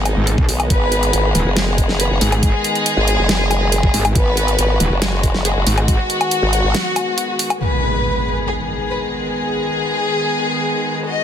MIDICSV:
0, 0, Header, 1, 7, 480
1, 0, Start_track
1, 0, Key_signature, 5, "minor"
1, 0, Tempo, 431655
1, 781, Time_signature, 4, 2, 24, 8
1, 12496, End_track
2, 0, Start_track
2, 0, Title_t, "Violin section"
2, 0, Program_c, 0, 48
2, 781, Note_on_c, 0, 59, 84
2, 781, Note_on_c, 0, 71, 105
2, 1647, Note_off_c, 0, 59, 0
2, 1647, Note_off_c, 0, 71, 0
2, 1741, Note_on_c, 0, 56, 82
2, 1741, Note_on_c, 0, 68, 87
2, 1830, Note_off_c, 0, 68, 0
2, 2114, Note_off_c, 0, 56, 0
2, 2221, Note_on_c, 0, 59, 80
2, 2221, Note_on_c, 0, 71, 86
2, 2310, Note_off_c, 0, 71, 0
2, 2594, Note_off_c, 0, 59, 0
2, 2701, Note_on_c, 0, 56, 89
2, 2701, Note_on_c, 0, 68, 109
2, 4527, Note_off_c, 0, 56, 0
2, 4527, Note_off_c, 0, 68, 0
2, 4621, Note_on_c, 0, 59, 84
2, 4621, Note_on_c, 0, 71, 108
2, 5487, Note_off_c, 0, 59, 0
2, 5487, Note_off_c, 0, 71, 0
2, 5581, Note_on_c, 0, 56, 82
2, 5581, Note_on_c, 0, 68, 93
2, 5670, Note_off_c, 0, 68, 0
2, 5954, Note_off_c, 0, 56, 0
2, 6061, Note_on_c, 0, 56, 80
2, 6061, Note_on_c, 0, 68, 90
2, 6150, Note_off_c, 0, 68, 0
2, 6434, Note_off_c, 0, 56, 0
2, 6540, Note_on_c, 0, 66, 110
2, 8367, Note_off_c, 0, 66, 0
2, 8461, Note_on_c, 0, 71, 89
2, 9327, Note_off_c, 0, 71, 0
2, 9420, Note_on_c, 0, 68, 76
2, 9509, Note_off_c, 0, 68, 0
2, 9901, Note_on_c, 0, 71, 75
2, 9990, Note_off_c, 0, 71, 0
2, 10381, Note_on_c, 0, 68, 94
2, 12207, Note_off_c, 0, 68, 0
2, 12300, Note_on_c, 0, 75, 93
2, 12496, Note_off_c, 0, 75, 0
2, 12496, End_track
3, 0, Start_track
3, 0, Title_t, "String section"
3, 0, Program_c, 1, 48
3, 0, Note_on_c, 1, 51, 85
3, 0, Note_on_c, 1, 56, 75
3, 0, Note_on_c, 1, 59, 77
3, 0, Note_on_c, 1, 63, 94
3, 767, Note_off_c, 1, 63, 0
3, 781, Note_on_c, 1, 68, 95
3, 4607, Note_off_c, 1, 68, 0
3, 4620, Note_on_c, 1, 66, 92
3, 8416, Note_off_c, 1, 51, 0
3, 8416, Note_off_c, 1, 56, 0
3, 8416, Note_off_c, 1, 59, 0
3, 8446, Note_off_c, 1, 66, 0
3, 8461, Note_on_c, 1, 51, 71
3, 8461, Note_on_c, 1, 56, 64
3, 8461, Note_on_c, 1, 59, 67
3, 8461, Note_on_c, 1, 68, 79
3, 12262, Note_off_c, 1, 68, 0
3, 12300, Note_on_c, 1, 66, 78
3, 12496, Note_off_c, 1, 51, 0
3, 12496, Note_off_c, 1, 56, 0
3, 12496, Note_off_c, 1, 59, 0
3, 12496, Note_off_c, 1, 66, 0
3, 12496, End_track
4, 0, Start_track
4, 0, Title_t, "Wobble bass"
4, 0, Program_c, 2, 39
4, 0, Note_on_c, 2, 32, 95
4, 164, Note_off_c, 2, 32, 0
4, 541, Note_on_c, 2, 35, 98
4, 762, Note_off_c, 2, 35, 0
4, 781, Note_on_c, 2, 32, 100
4, 1242, Note_off_c, 2, 32, 0
4, 1262, Note_on_c, 2, 32, 100
4, 1482, Note_off_c, 2, 32, 0
4, 1624, Note_on_c, 2, 30, 101
4, 2324, Note_off_c, 2, 30, 0
4, 2344, Note_on_c, 2, 30, 99
4, 2442, Note_off_c, 2, 30, 0
4, 3303, Note_on_c, 2, 32, 100
4, 3524, Note_off_c, 2, 32, 0
4, 3543, Note_on_c, 2, 30, 99
4, 4244, Note_off_c, 2, 30, 0
4, 4263, Note_on_c, 2, 30, 100
4, 4362, Note_off_c, 2, 30, 0
4, 4620, Note_on_c, 2, 32, 101
4, 5082, Note_off_c, 2, 32, 0
4, 5100, Note_on_c, 2, 32, 105
4, 5322, Note_off_c, 2, 32, 0
4, 5463, Note_on_c, 2, 30, 102
4, 6164, Note_off_c, 2, 30, 0
4, 6183, Note_on_c, 2, 30, 99
4, 6282, Note_off_c, 2, 30, 0
4, 7144, Note_on_c, 2, 32, 100
4, 7364, Note_off_c, 2, 32, 0
4, 7384, Note_on_c, 2, 32, 100
4, 7501, Note_off_c, 2, 32, 0
4, 12496, End_track
5, 0, Start_track
5, 0, Title_t, "Wobble bass"
5, 0, Program_c, 3, 39
5, 183, Note_on_c, 3, 32, 101
5, 404, Note_off_c, 3, 32, 0
5, 424, Note_on_c, 3, 35, 103
5, 522, Note_off_c, 3, 35, 0
5, 1501, Note_on_c, 3, 27, 96
5, 1604, Note_off_c, 3, 27, 0
5, 2461, Note_on_c, 3, 32, 100
5, 2804, Note_off_c, 3, 32, 0
5, 4380, Note_on_c, 3, 32, 100
5, 4602, Note_off_c, 3, 32, 0
5, 5340, Note_on_c, 3, 27, 99
5, 5443, Note_off_c, 3, 27, 0
5, 6301, Note_on_c, 3, 32, 99
5, 6644, Note_off_c, 3, 32, 0
5, 12496, End_track
6, 0, Start_track
6, 0, Title_t, "Impact"
6, 0, Program_c, 4, 103
6, 8461, Note_on_c, 4, 60, 65
6, 10381, Note_off_c, 4, 60, 0
6, 12496, End_track
7, 0, Start_track
7, 0, Title_t, "Drums"
7, 61, Note_on_c, 9, 42, 55
7, 61, Note_on_c, 9, 77, 53
7, 172, Note_off_c, 9, 42, 0
7, 172, Note_off_c, 9, 77, 0
7, 301, Note_on_c, 9, 42, 84
7, 412, Note_off_c, 9, 42, 0
7, 424, Note_on_c, 9, 36, 112
7, 535, Note_off_c, 9, 36, 0
7, 541, Note_on_c, 9, 46, 89
7, 652, Note_off_c, 9, 46, 0
7, 664, Note_on_c, 9, 42, 37
7, 664, Note_on_c, 9, 77, 59
7, 775, Note_off_c, 9, 42, 0
7, 775, Note_off_c, 9, 77, 0
7, 781, Note_on_c, 9, 36, 120
7, 781, Note_on_c, 9, 42, 77
7, 892, Note_off_c, 9, 36, 0
7, 893, Note_off_c, 9, 42, 0
7, 1021, Note_on_c, 9, 42, 51
7, 1132, Note_off_c, 9, 42, 0
7, 1144, Note_on_c, 9, 42, 36
7, 1255, Note_off_c, 9, 42, 0
7, 1261, Note_on_c, 9, 42, 77
7, 1372, Note_off_c, 9, 42, 0
7, 1501, Note_on_c, 9, 42, 52
7, 1612, Note_off_c, 9, 42, 0
7, 1741, Note_on_c, 9, 38, 118
7, 1741, Note_on_c, 9, 42, 80
7, 1852, Note_off_c, 9, 38, 0
7, 1852, Note_off_c, 9, 42, 0
7, 1981, Note_on_c, 9, 36, 63
7, 1981, Note_on_c, 9, 42, 52
7, 2092, Note_off_c, 9, 36, 0
7, 2092, Note_off_c, 9, 42, 0
7, 2103, Note_on_c, 9, 38, 39
7, 2214, Note_off_c, 9, 38, 0
7, 2220, Note_on_c, 9, 42, 79
7, 2332, Note_off_c, 9, 42, 0
7, 2460, Note_on_c, 9, 46, 89
7, 2571, Note_off_c, 9, 46, 0
7, 2583, Note_on_c, 9, 42, 37
7, 2583, Note_on_c, 9, 77, 63
7, 2694, Note_off_c, 9, 42, 0
7, 2694, Note_off_c, 9, 77, 0
7, 2700, Note_on_c, 9, 42, 80
7, 2701, Note_on_c, 9, 36, 121
7, 2811, Note_off_c, 9, 42, 0
7, 2812, Note_off_c, 9, 36, 0
7, 2940, Note_on_c, 9, 42, 50
7, 3051, Note_off_c, 9, 42, 0
7, 3063, Note_on_c, 9, 42, 35
7, 3174, Note_off_c, 9, 42, 0
7, 3180, Note_on_c, 9, 42, 79
7, 3291, Note_off_c, 9, 42, 0
7, 3420, Note_on_c, 9, 42, 51
7, 3531, Note_off_c, 9, 42, 0
7, 3660, Note_on_c, 9, 38, 120
7, 3660, Note_on_c, 9, 42, 79
7, 3771, Note_off_c, 9, 38, 0
7, 3771, Note_off_c, 9, 42, 0
7, 3900, Note_on_c, 9, 42, 52
7, 3900, Note_on_c, 9, 77, 57
7, 4011, Note_off_c, 9, 42, 0
7, 4011, Note_off_c, 9, 77, 0
7, 4140, Note_on_c, 9, 42, 79
7, 4251, Note_off_c, 9, 42, 0
7, 4263, Note_on_c, 9, 36, 105
7, 4374, Note_off_c, 9, 36, 0
7, 4380, Note_on_c, 9, 46, 91
7, 4491, Note_off_c, 9, 46, 0
7, 4503, Note_on_c, 9, 42, 36
7, 4503, Note_on_c, 9, 77, 66
7, 4614, Note_off_c, 9, 42, 0
7, 4614, Note_off_c, 9, 77, 0
7, 4620, Note_on_c, 9, 36, 123
7, 4620, Note_on_c, 9, 42, 81
7, 4731, Note_off_c, 9, 42, 0
7, 4732, Note_off_c, 9, 36, 0
7, 4860, Note_on_c, 9, 42, 51
7, 4972, Note_off_c, 9, 42, 0
7, 4983, Note_on_c, 9, 42, 38
7, 5094, Note_off_c, 9, 42, 0
7, 5100, Note_on_c, 9, 42, 78
7, 5211, Note_off_c, 9, 42, 0
7, 5340, Note_on_c, 9, 42, 54
7, 5451, Note_off_c, 9, 42, 0
7, 5580, Note_on_c, 9, 38, 116
7, 5580, Note_on_c, 9, 42, 81
7, 5691, Note_off_c, 9, 38, 0
7, 5691, Note_off_c, 9, 42, 0
7, 5820, Note_on_c, 9, 36, 62
7, 5820, Note_on_c, 9, 42, 53
7, 5932, Note_off_c, 9, 36, 0
7, 5932, Note_off_c, 9, 42, 0
7, 5943, Note_on_c, 9, 38, 36
7, 6054, Note_off_c, 9, 38, 0
7, 6060, Note_on_c, 9, 42, 78
7, 6172, Note_off_c, 9, 42, 0
7, 6300, Note_on_c, 9, 46, 95
7, 6411, Note_off_c, 9, 46, 0
7, 6423, Note_on_c, 9, 42, 37
7, 6423, Note_on_c, 9, 77, 64
7, 6534, Note_off_c, 9, 42, 0
7, 6534, Note_off_c, 9, 77, 0
7, 6541, Note_on_c, 9, 36, 118
7, 6541, Note_on_c, 9, 42, 88
7, 6652, Note_off_c, 9, 36, 0
7, 6652, Note_off_c, 9, 42, 0
7, 6781, Note_on_c, 9, 42, 55
7, 6892, Note_off_c, 9, 42, 0
7, 6904, Note_on_c, 9, 42, 38
7, 6904, Note_on_c, 9, 77, 66
7, 7015, Note_off_c, 9, 42, 0
7, 7015, Note_off_c, 9, 77, 0
7, 7021, Note_on_c, 9, 42, 84
7, 7132, Note_off_c, 9, 42, 0
7, 7261, Note_on_c, 9, 42, 54
7, 7372, Note_off_c, 9, 42, 0
7, 7501, Note_on_c, 9, 38, 116
7, 7501, Note_on_c, 9, 42, 80
7, 7612, Note_off_c, 9, 38, 0
7, 7612, Note_off_c, 9, 42, 0
7, 7741, Note_on_c, 9, 42, 55
7, 7741, Note_on_c, 9, 77, 58
7, 7852, Note_off_c, 9, 42, 0
7, 7852, Note_off_c, 9, 77, 0
7, 7981, Note_on_c, 9, 42, 85
7, 8092, Note_off_c, 9, 42, 0
7, 8221, Note_on_c, 9, 46, 96
7, 8332, Note_off_c, 9, 46, 0
7, 8343, Note_on_c, 9, 42, 37
7, 8343, Note_on_c, 9, 77, 66
7, 8455, Note_off_c, 9, 42, 0
7, 8455, Note_off_c, 9, 77, 0
7, 8461, Note_on_c, 9, 49, 76
7, 8572, Note_off_c, 9, 49, 0
7, 12496, End_track
0, 0, End_of_file